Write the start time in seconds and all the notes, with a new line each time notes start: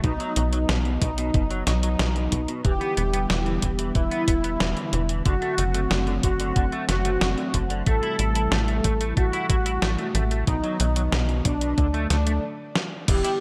0.04 B1 B2 F#3 B3 D#4, kick, closed hi-hat
0.20 F#3, closed hi-hat
0.36 B1 F#3, closed hi-hat
0.53 F#3, closed hi-hat
0.69 B1 B2, snare, closed hi-hat
0.85 B2, closed hi-hat
1.01 B1 B2 D#4, kick, closed hi-hat
1.18 B2, closed hi-hat
1.34 F#1 B2, kick, closed hi-hat
1.51 F#3, closed hi-hat
1.67 B1 F#3 D#4, snare, closed hi-hat
1.83 F#3, closed hi-hat
1.99 B1 B2, snare, closed hi-hat
2.16 B2, closed hi-hat
2.32 B1 B2, kick, closed hi-hat
2.48 B2, closed hi-hat
2.65 E1 D3 E3 G3 E4 G4, kick, closed hi-hat
2.81 B3, closed hi-hat
2.97 E1 B3, closed hi-hat
3.13 B3, closed hi-hat
3.30 E1 E3, snare, closed hi-hat
3.46 E3, closed hi-hat
3.62 E1 E3, kick, closed hi-hat
3.79 E3, closed hi-hat
3.95 E1 E3 E4, kick, closed hi-hat
4.11 B3, closed hi-hat
4.28 E1 B3, kick, closed hi-hat
4.44 B3, closed hi-hat
4.60 E1 E3, snare, closed hi-hat
4.77 E3, closed hi-hat
4.93 E1 E3, closed hi-hat
5.09 E3, closed hi-hat
5.25 F#1 D3 F#3 A3 C4 F#4, kick, closed hi-hat
5.42 A3, closed hi-hat
5.58 F#1 A3, closed hi-hat
5.74 A3, closed hi-hat
5.91 F#1 D3, snare, closed hi-hat
6.07 D3, closed hi-hat
6.23 F#1 D3 F#4, kick, closed hi-hat
6.40 D3, closed hi-hat
6.56 F#1 D3, kick, closed hi-hat
6.72 A3, closed hi-hat
6.89 F#1 A3 F#4, snare, closed hi-hat
7.05 A3, closed hi-hat
7.21 F#1 D3, snare, closed hi-hat
7.38 D3, closed hi-hat
7.54 F#1 D3, kick, closed hi-hat
7.70 D3, closed hi-hat
7.86 A1 C3 E3 G3 A3 E4 A4, kick, closed hi-hat
8.03 E4, closed hi-hat
8.19 A1 E4, closed hi-hat
8.35 E4, closed hi-hat
8.52 A1 A3, snare, closed hi-hat
8.68 A3, closed hi-hat
8.84 A1 A3, kick, closed hi-hat
9.01 A3, closed hi-hat
9.17 A1 A3 F#4, kick, closed hi-hat
9.33 E4, closed hi-hat
9.50 A1 E4, kick, closed hi-hat
9.66 E4, closed hi-hat
9.82 A1 A3, snare, closed hi-hat
9.98 A3, closed hi-hat
10.15 A1 A3, closed hi-hat
10.31 A3, closed hi-hat
10.47 B1 B2 D#3 F#3 B3 D#4, kick, closed hi-hat
10.64 F#3, closed hi-hat
10.80 B1 F#3, closed hi-hat
10.96 F#3, closed hi-hat
11.12 B1 B2, snare, closed hi-hat
11.29 B2, closed hi-hat
11.45 B1 B2 D4, kick, closed hi-hat
11.61 B2, closed hi-hat
11.78 D2 D3 A3, kick, closed hi-hat
11.94 A3, closed hi-hat
12.10 D2 A3 D4, snare, closed hi-hat
12.27 A3, closed hi-hat
12.75 snare
13.08 E1 D3 E3 G3 B3 E4 G4, kick, closed hi-hat, crash
13.24 E4, closed hi-hat